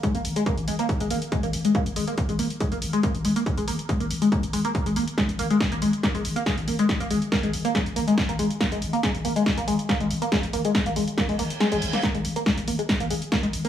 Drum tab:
HH |xxoxxxoxxxoxxxox|xxoxxxoxxxoxxxox|xxoxxxoxxxoxxxox|xxoxxxoxxxoxxxox|
SD |----------------|----------------|----------------|o---o---o---o---|
BD |o---o---o---o---|o---o---o---o---|o---o---o---o---|o---o---o---o---|

HH |xxoxxxoxxxoxxxox|xxoxxxoxxxoxxxox|xxoxxxoxxooxxxox|xxoxxxoxxxoxxxox|
SD |o---o---o---o---|o---o---o---o---|o---o---o---o--o|o---o---o---o---|
BD |o---o---o---o---|o---o---o---o---|o---o---o-------|o---o---o---o---|